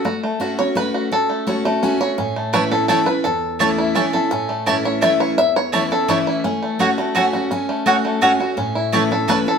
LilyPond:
<<
  \new Staff \with { instrumentName = "Mandolin" } { \time 3/4 \key a \major \tempo 4 = 169 r2. | r2. | r4 <a e' cis'' a''>16 r8. <a e' cis'' a''>16 r8. | r4 <a e' cis'' a''>16 r8. <a e' cis'' a''>16 r8. |
r4 <a e' cis'' a''>16 r8. <a e' cis'' a''>16 r8. | r4 <a e' cis'' a''>16 r8. <a e' cis'' a''>16 r8. | r4 <a fis' cis'' fis''>16 r8. <a fis' cis'' fis''>16 r8. | r4 <a fis' cis'' fis''>16 r8. <a fis' cis'' fis''>16 r8. |
r4 <a e' cis'' a''>16 r8. <a e' cis'' a''>16 r8. | }
  \new Staff \with { instrumentName = "Five-string banjo" } { \time 3/4 \key a \major << { fis'8 r4 cis''8 b'4 | a'4 cis''8 r4 cis''8~ | cis''4 b'8 a'8 a'8 b'8 | a'4 r2 |
r4. cis''8 e''8 cis''8 | e''8 cis''4 a'8 e'4~ | e'4. r4. | r2. |
r4. a'8 b'8 a'8 | } \\ { r8 a8 fis'4. fis'8~ | fis'8 a4 a8 cis'4 | cis'8 a4. r4 | r4 a'8 e'8 cis'8 a'8 |
cis'8 a8 e'4. r8 | r4 e'4. e'8 | cis'8 a8 fis'8 a8 cis'8 fis'8 | cis'8 a8 cis'8 a8 cis'8 fis'8 |
cis'8 e'8 a'4. r8 | } >> }
  \new Staff \with { instrumentName = "Steel-string acoustic guitar" } { \time 3/4 \key a \major << { r4 <a cis' fis'>8 <cis' fis'>8 <a cis' fis'>4 | r4 <a cis' fis'>8 <cis' fis'>8 <a cis' fis'>8 <cis' fis'>8 | r4 <e a cis' e'>8 <cis' e'>8 <e a cis' e'>8 <cis' e'>8 | r4 <e a cis' e'>4 <e a cis' e'>8 <cis' e'>8 |
r4 <e a cis' e'>4 <e a cis' e'>4 | r4 <e a cis' e'>8 <cis' e'>8 <e a cis' e'>4 | r4 <a cis' fis'>8 <cis' fis'>8 <a cis' fis'>8 <cis' fis'>8 | r4 <a cis' fis'>4 <a cis' fis'>8 <cis' fis'>8 |
r4 <e a cis' e'>8 <cis' e'>8 <e a cis' e'>8 <cis' e'>8 | } \\ { a2 r4 | cis'2 r4 | a,2 r4 | e,2 r4 |
a,2 r4 | e,2 r4 | a2 r4 | cis'2 r4 |
a,2 r4 | } >> }
>>